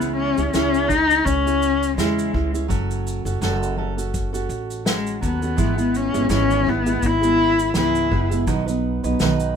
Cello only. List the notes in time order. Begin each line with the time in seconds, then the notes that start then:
Already playing: B3
0.17 C#4
0.53 C#4
0.89 D#4
1.25 C#4
1.98 G#3
4.87 G#3
5.24 B3
5.97 C#4
6.32 C#4
6.69 B3
7.06 E4
7.78 E4